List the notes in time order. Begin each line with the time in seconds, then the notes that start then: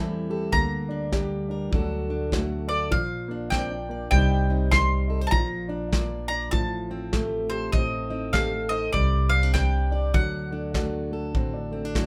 Already playing: E2 E3 G3 A3 C4 E4 A4 A5
0.30 G4 A4
0.52 D2 D3 A#3 A#5, kick
0.89 D4
1.12 G3 G4, kick, snare
1.49 D4 A#4
1.71 D2 D3 F#3 A3 D4 F#4 A4, kick
2.09 A3 D4
2.31 F#3 A3 F#4, kick, snare
2.68 D4 A4 D5
2.91 A#1 A#2 F3 F5, kick
3.28 A#3 D4
3.50 A#3 C4 D5 G5, kick, snare
3.70 D4
3.89 A#3 D5
4.11 C2 C3 G3 D#4 G4 G5, kick
4.15 C5
4.49 C4 D#4
4.71 G3 G4 C6, kick, snare
5.08 D#4 A4
5.21 C5
5.27 A5
5.31 A#1 A#2 F3 A#5, kick
5.68 D4
5.92 A#3 F4 D5, kick, snare
6.28 D4 D5 A#5
6.51 A1 A2 F3 A5, kick
6.90 C4
7.13 A3 G4, kick, snare
7.50 G4 A4 C5
7.72 A1 A2 C4 D#5, kick
8.10 C4 D#4
8.33 A3 G4 A4 F5, kick, snare
8.52 A4
8.69 D#4 C5 D#5
8.93 C2 C3 G3 D5, kick
9.29 C4 F5
9.43 D4
9.54 G3 G4 G5, kick, snare
9.91 D4 D5
10.14 D2 D3 F#3 F#5, kick
10.51 A3 D4
10.74 A3 D4 F#4, kick, snare
11.11 A3 A4
11.34 A1 A2 C4 F#4, kick
11.53 D4
11.71 A3 C4
11.85 D4
11.95 F#3 A3, kick, snare